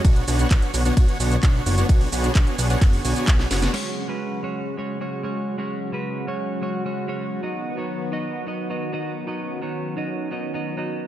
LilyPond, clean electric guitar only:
\new Staff \with { instrumentName = "Clean electric guitar" } { \time 4/4 \key b \lydian \tempo 4 = 130 r1 | r1 | <gis cis' fis' cis''>8. <gis cis' fis' b'>8. <gis cis' fis' cis''>8. <gis cis' fis' cis''>8 <gis cis' fis' cis''>8 <gis cis' fis' cis''>8. | <gis cis' fis' cis''>8. <gis cis' fis' b'>8. <gis cis' fis' cis''>8. <gis cis' fis' cis''>8 <gis cis' fis' cis''>8 <gis cis' fis' cis''>8. |
<b dis' fis' dis''>8. <b dis' fis' cis''>8. <b dis' fis' dis''>8. <b dis' fis' dis''>8 <b dis' fis' dis''>8 <b dis' fis' dis''>8. | <b dis' fis' dis''>8. <b dis' fis' cis''>8. <b dis' fis' dis''>8. <b dis' fis' dis''>8 <b dis' fis' dis''>8 <b dis' fis' dis''>8. | }